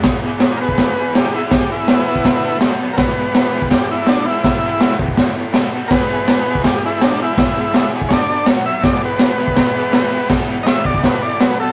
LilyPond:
<<
  \new Staff \with { instrumentName = "Transistor combo organ" } { \time 4/4 \key e \major \tempo 4 = 164 r4. <ais' b'>4. g'8 e'8 | g'8 e'8 <b e'>2 r4 | <ais' b'>2 g'8 e'8 d'8 e'8~ | e'4. r2 r8 |
<ais' b'>2 g'8 e'8 d'8 e'8~ | e'4. r8 <cis'' d''>4 r8 e''8 | d''8 b'8 b'2. | r4 <dis'' e''>8 d''8 b'8 d''8 b'8 a'8 | }
  \new Staff \with { instrumentName = "Overdriven electric guitar" } { \time 4/4 \key e \major <e b e' gis'>8 <e b e' gis'>8 <e b e' gis'>8 <e b e' gis'>8 <e b e' gis'>8 <e b e' gis'>8 <e b e' gis'>8 <e b e' gis'>8 | <e b e' gis'>8 <e b e' gis'>8 <e b e' gis'>8 <e b e' gis'>8 <d a d' a'>8 <d a d' a'>8 <b, fis b fis'>8 <b, fis b fis'>8 | <e gis b e'>8 <e gis b e'>8 <e gis b e'>8 <e gis b e'>8 <e gis b e'>8 <e gis b e'>8 <e gis b e'>8 <e gis b e'>8 | <e gis b e'>8 <e gis b e'>8 <e gis b e'>8 <e gis b e'>8 <a, e a e'>8 <a, e a e'>8 <b, fis b fis'>8 <b, fis b fis'>8 |
<e gis b e' gis'>8 <e gis b e' gis'>8 <e gis b e' gis'>8 <e gis b e' gis'>8 <e gis b e' gis'>8 <e gis b e' gis'>8 <e gis b e' gis'>8 <e gis b e' gis'>8 | <e gis b e' gis'>8 <e gis b e' gis'>8 <e gis b e' gis'>8 <e gis b e' gis'>8 <d a d' a'>8 <d a d' a'>8 <b, fis b fis'>8 <b, fis b fis'>8 | <e gis b e'>8 <e gis b e'>8 <e gis b e'>8 <e gis b e'>8 <e gis b e'>8 <e gis b e'>8 <e gis b e'>8 <e gis b e'>8 | <e gis b e'>8 <e gis b e'>8 <e gis b e'>8 <e gis b e'>8 <a, e a e'>8 <a, e a e'>8 <b, fis b fis'>8 <b, fis b fis'>8 | }
  \new DrumStaff \with { instrumentName = "Drums" } \drummode { \time 4/4 <cymc bd sn>4 <cymc sn>8. bd16 <cymc bd sn>4 <cymc sn>4 | <cymc bd sn>4 <cymc sn>8. bd16 <cymc bd sn>4 <cymc sn>4 | <cymc bd sn>4 <cymc sn>8. bd16 <cymc bd sn>4 <cymc sn>4 | <cymc bd sn>4 <cymc sn>8 bd16 bd16 <cymc bd sn>4 <cymc sn>4 |
<cymc bd sn>4 <cymc sn>8. bd16 <cymc bd sn>4 <cymc sn>4 | <cymc bd sn>4 <cymc sn>8. bd16 <cymc bd sn>4 <cymc sn>4 | <cymc bd sn>4 <cymc sn>8. bd16 <cymc bd sn>4 <cymc sn>4 | <cymc bd sn>4 <cymc sn>8 bd16 bd16 <cymc bd sn>4 <cymc sn>4 | }
>>